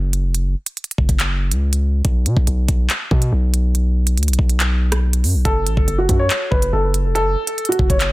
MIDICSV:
0, 0, Header, 1, 4, 480
1, 0, Start_track
1, 0, Key_signature, 3, "minor"
1, 0, Tempo, 425532
1, 389, Time_signature, 4, 2, 24, 8
1, 9162, End_track
2, 0, Start_track
2, 0, Title_t, "Upright piano"
2, 0, Program_c, 0, 0
2, 6148, Note_on_c, 0, 69, 105
2, 6713, Note_off_c, 0, 69, 0
2, 6748, Note_on_c, 0, 66, 81
2, 6958, Note_off_c, 0, 66, 0
2, 6987, Note_on_c, 0, 73, 86
2, 7326, Note_off_c, 0, 73, 0
2, 7343, Note_on_c, 0, 71, 82
2, 7555, Note_off_c, 0, 71, 0
2, 7592, Note_on_c, 0, 69, 79
2, 8042, Note_off_c, 0, 69, 0
2, 8066, Note_on_c, 0, 69, 113
2, 8631, Note_off_c, 0, 69, 0
2, 8672, Note_on_c, 0, 66, 81
2, 8880, Note_off_c, 0, 66, 0
2, 8911, Note_on_c, 0, 73, 81
2, 9162, Note_off_c, 0, 73, 0
2, 9162, End_track
3, 0, Start_track
3, 0, Title_t, "808-style bass"
3, 0, Program_c, 1, 38
3, 0, Note_on_c, 1, 30, 101
3, 268, Note_on_c, 1, 29, 98
3, 285, Note_off_c, 1, 30, 0
3, 448, Note_on_c, 1, 30, 97
3, 465, Note_off_c, 1, 29, 0
3, 620, Note_off_c, 1, 30, 0
3, 1108, Note_on_c, 1, 30, 102
3, 1221, Note_off_c, 1, 30, 0
3, 1228, Note_on_c, 1, 30, 106
3, 1709, Note_on_c, 1, 37, 95
3, 1726, Note_off_c, 1, 30, 0
3, 2279, Note_off_c, 1, 37, 0
3, 2309, Note_on_c, 1, 35, 102
3, 2549, Note_on_c, 1, 47, 99
3, 2566, Note_off_c, 1, 35, 0
3, 2663, Note_off_c, 1, 47, 0
3, 2669, Note_on_c, 1, 35, 102
3, 2782, Note_off_c, 1, 35, 0
3, 2788, Note_on_c, 1, 35, 99
3, 3019, Note_off_c, 1, 35, 0
3, 3028, Note_on_c, 1, 35, 98
3, 3259, Note_off_c, 1, 35, 0
3, 3510, Note_on_c, 1, 47, 107
3, 3740, Note_off_c, 1, 47, 0
3, 3750, Note_on_c, 1, 35, 106
3, 4708, Note_on_c, 1, 38, 96
3, 4725, Note_off_c, 1, 35, 0
3, 4829, Note_on_c, 1, 35, 102
3, 4846, Note_off_c, 1, 38, 0
3, 4943, Note_off_c, 1, 35, 0
3, 4949, Note_on_c, 1, 35, 101
3, 5909, Note_on_c, 1, 42, 99
3, 5926, Note_off_c, 1, 35, 0
3, 6029, Note_on_c, 1, 35, 100
3, 6046, Note_off_c, 1, 42, 0
3, 6143, Note_off_c, 1, 35, 0
3, 6150, Note_on_c, 1, 30, 102
3, 6389, Note_on_c, 1, 33, 98
3, 6406, Note_off_c, 1, 30, 0
3, 6503, Note_off_c, 1, 33, 0
3, 6510, Note_on_c, 1, 30, 104
3, 6622, Note_off_c, 1, 30, 0
3, 6629, Note_on_c, 1, 30, 105
3, 6859, Note_off_c, 1, 30, 0
3, 6870, Note_on_c, 1, 42, 99
3, 7100, Note_off_c, 1, 42, 0
3, 7351, Note_on_c, 1, 30, 108
3, 7581, Note_off_c, 1, 30, 0
3, 7590, Note_on_c, 1, 30, 106
3, 7949, Note_on_c, 1, 29, 99
3, 7966, Note_off_c, 1, 30, 0
3, 8129, Note_on_c, 1, 30, 96
3, 8146, Note_off_c, 1, 29, 0
3, 8300, Note_off_c, 1, 30, 0
3, 8789, Note_on_c, 1, 30, 100
3, 8902, Note_off_c, 1, 30, 0
3, 8909, Note_on_c, 1, 30, 108
3, 9162, Note_off_c, 1, 30, 0
3, 9162, End_track
4, 0, Start_track
4, 0, Title_t, "Drums"
4, 149, Note_on_c, 9, 42, 72
4, 262, Note_off_c, 9, 42, 0
4, 389, Note_on_c, 9, 42, 72
4, 502, Note_off_c, 9, 42, 0
4, 749, Note_on_c, 9, 42, 88
4, 862, Note_off_c, 9, 42, 0
4, 869, Note_on_c, 9, 42, 46
4, 949, Note_off_c, 9, 42, 0
4, 949, Note_on_c, 9, 42, 60
4, 1028, Note_off_c, 9, 42, 0
4, 1028, Note_on_c, 9, 42, 73
4, 1109, Note_on_c, 9, 36, 93
4, 1141, Note_off_c, 9, 42, 0
4, 1221, Note_off_c, 9, 36, 0
4, 1228, Note_on_c, 9, 36, 95
4, 1229, Note_on_c, 9, 42, 71
4, 1341, Note_off_c, 9, 36, 0
4, 1342, Note_off_c, 9, 42, 0
4, 1349, Note_on_c, 9, 39, 115
4, 1349, Note_on_c, 9, 42, 81
4, 1462, Note_off_c, 9, 39, 0
4, 1462, Note_off_c, 9, 42, 0
4, 1709, Note_on_c, 9, 42, 73
4, 1822, Note_off_c, 9, 42, 0
4, 1949, Note_on_c, 9, 42, 79
4, 2062, Note_off_c, 9, 42, 0
4, 2308, Note_on_c, 9, 42, 70
4, 2309, Note_on_c, 9, 36, 103
4, 2421, Note_off_c, 9, 36, 0
4, 2421, Note_off_c, 9, 42, 0
4, 2549, Note_on_c, 9, 42, 75
4, 2662, Note_off_c, 9, 42, 0
4, 2669, Note_on_c, 9, 36, 90
4, 2782, Note_off_c, 9, 36, 0
4, 2789, Note_on_c, 9, 42, 84
4, 2901, Note_off_c, 9, 42, 0
4, 3028, Note_on_c, 9, 36, 95
4, 3028, Note_on_c, 9, 42, 88
4, 3141, Note_off_c, 9, 36, 0
4, 3141, Note_off_c, 9, 42, 0
4, 3268, Note_on_c, 9, 39, 113
4, 3268, Note_on_c, 9, 42, 80
4, 3381, Note_off_c, 9, 39, 0
4, 3381, Note_off_c, 9, 42, 0
4, 3510, Note_on_c, 9, 36, 104
4, 3623, Note_off_c, 9, 36, 0
4, 3629, Note_on_c, 9, 42, 68
4, 3742, Note_off_c, 9, 42, 0
4, 3989, Note_on_c, 9, 42, 70
4, 4102, Note_off_c, 9, 42, 0
4, 4228, Note_on_c, 9, 42, 73
4, 4341, Note_off_c, 9, 42, 0
4, 4588, Note_on_c, 9, 42, 88
4, 4701, Note_off_c, 9, 42, 0
4, 4709, Note_on_c, 9, 42, 46
4, 4769, Note_off_c, 9, 42, 0
4, 4769, Note_on_c, 9, 42, 57
4, 4829, Note_off_c, 9, 42, 0
4, 4829, Note_on_c, 9, 42, 65
4, 4889, Note_off_c, 9, 42, 0
4, 4889, Note_on_c, 9, 42, 76
4, 4949, Note_on_c, 9, 36, 95
4, 5001, Note_off_c, 9, 42, 0
4, 5062, Note_off_c, 9, 36, 0
4, 5070, Note_on_c, 9, 42, 71
4, 5183, Note_off_c, 9, 42, 0
4, 5190, Note_on_c, 9, 39, 117
4, 5190, Note_on_c, 9, 42, 76
4, 5303, Note_off_c, 9, 39, 0
4, 5303, Note_off_c, 9, 42, 0
4, 5550, Note_on_c, 9, 37, 102
4, 5550, Note_on_c, 9, 42, 72
4, 5663, Note_off_c, 9, 37, 0
4, 5663, Note_off_c, 9, 42, 0
4, 5790, Note_on_c, 9, 42, 84
4, 5903, Note_off_c, 9, 42, 0
4, 5910, Note_on_c, 9, 46, 51
4, 6023, Note_off_c, 9, 46, 0
4, 6150, Note_on_c, 9, 36, 106
4, 6151, Note_on_c, 9, 42, 71
4, 6263, Note_off_c, 9, 36, 0
4, 6263, Note_off_c, 9, 42, 0
4, 6391, Note_on_c, 9, 42, 76
4, 6503, Note_off_c, 9, 42, 0
4, 6510, Note_on_c, 9, 36, 92
4, 6623, Note_off_c, 9, 36, 0
4, 6631, Note_on_c, 9, 42, 80
4, 6744, Note_off_c, 9, 42, 0
4, 6870, Note_on_c, 9, 36, 95
4, 6871, Note_on_c, 9, 42, 88
4, 6982, Note_off_c, 9, 36, 0
4, 6983, Note_off_c, 9, 42, 0
4, 7110, Note_on_c, 9, 39, 116
4, 7110, Note_on_c, 9, 42, 82
4, 7223, Note_off_c, 9, 39, 0
4, 7223, Note_off_c, 9, 42, 0
4, 7351, Note_on_c, 9, 36, 106
4, 7464, Note_off_c, 9, 36, 0
4, 7471, Note_on_c, 9, 42, 68
4, 7583, Note_off_c, 9, 42, 0
4, 7831, Note_on_c, 9, 42, 68
4, 7943, Note_off_c, 9, 42, 0
4, 8071, Note_on_c, 9, 42, 74
4, 8184, Note_off_c, 9, 42, 0
4, 8430, Note_on_c, 9, 42, 89
4, 8543, Note_off_c, 9, 42, 0
4, 8550, Note_on_c, 9, 42, 47
4, 8630, Note_off_c, 9, 42, 0
4, 8630, Note_on_c, 9, 42, 63
4, 8710, Note_off_c, 9, 42, 0
4, 8710, Note_on_c, 9, 42, 74
4, 8789, Note_on_c, 9, 36, 96
4, 8822, Note_off_c, 9, 42, 0
4, 8902, Note_off_c, 9, 36, 0
4, 8909, Note_on_c, 9, 36, 94
4, 8910, Note_on_c, 9, 42, 72
4, 9021, Note_off_c, 9, 36, 0
4, 9023, Note_off_c, 9, 42, 0
4, 9029, Note_on_c, 9, 39, 121
4, 9029, Note_on_c, 9, 42, 82
4, 9142, Note_off_c, 9, 39, 0
4, 9142, Note_off_c, 9, 42, 0
4, 9162, End_track
0, 0, End_of_file